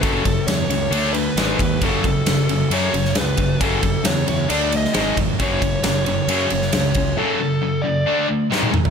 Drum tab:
RD |x-x-x-x-x-x-x-x-|x-x-x-x-x-x-x-x-|x-x-x-x-x-x-x-x-|x-x-x-x-x-x-x-x-|
SD |----o-------o---|----o------oo---|----o------oo---|----o------oo---|
T1 |----------------|----------------|----------------|----------------|
T2 |----------------|----------------|----------------|----------------|
FT |----------------|----------------|----------------|----------------|
BD |o-o-----------o-|o-o-----------o-|o-o-----------o-|o-o-----------o-|

RD |----------------|
SD |------------o---|
T1 |-------------o--|
T2 |--------------o-|
FT |---------------o|
BD |----------------|